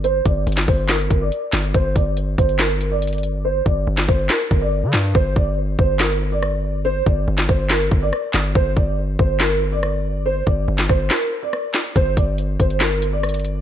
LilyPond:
<<
  \new Staff \with { instrumentName = "Felt piano" } { \time 4/4 \key g \minor \tempo 4 = 141 c''8 d''8 r8 c''8 bes'8. d''4~ d''16 | c''8 d''8 r8 c''8 bes'8. d''4~ d''16 | c''8 d''8 r8 c''8 bes'8. d''4~ d''16 | c''8 d''8 r8 c''8 bes'8. d''4~ d''16 |
c''8 d''8 r8 c''8 bes'8. d''4~ d''16 | c''8 d''8 r8 c''8 bes'8. d''4~ d''16 | c''8 d''8 r8 c''8 bes'8. d''4~ d''16 | c''8 d''8 r8 c''8 bes'8. d''4~ d''16 | }
  \new Staff \with { instrumentName = "808-style bass" } { \clef bass \time 4/4 \key g \minor g,,8 g,,8 g,,8 g,,4 g,,8 r8 g,,8 | g,,8 g,,4 g,,2~ g,,8~ | g,,8 g,,8 g,,8 g,,8 r8 g,,8. d16 g,8 | g,,8 g,,4 g,,2~ g,,8~ |
g,,8 g,,8 g,,8 g,,4 g,,8 r8 g,,8 | g,,8 g,,4 g,,2~ g,,8~ | g,,8 g,,8 g,,8 g,,8 r2 | g,,8 g,,4 g,,2~ g,,8 | }
  \new DrumStaff \with { instrumentName = "Drums" } \drummode { \time 4/4 hh8 <hh bd>8 hh32 hh32 <hc hh sn>32 hh32 <hho bd>8 <hc hh sn>8 <hh bd>8 hh8 <hc hh sn>8 | <hh bd>8 <hh bd>8 hh8 <hh bd>16 hh16 <hc hh sn>8 hh8 hh32 hh32 hh32 hh32 hh8 | r8 bd8 r16 <hc sn>16 bd8 <hc sn>8 bd8 r8 <hc sn>8 | bd8 bd8 r8 bd8 <hc sn>4 ss4 |
r8 bd8 r16 <hc sn>16 bd8 <hc sn>8 bd8 ss8 <hc sn>8 | bd8 bd8 r8 bd8 <hc sn>4 ss4 | r8 bd8 r16 <hc sn>16 <bd ss>8 <hc sn>4 ss8 <hc sn>8 | <hh bd>8 <hh bd>8 hh8 <hh bd>16 hh16 <hc hh sn>8 hh8 <hh ss>32 hh32 hh32 hh32 hh8 | }
>>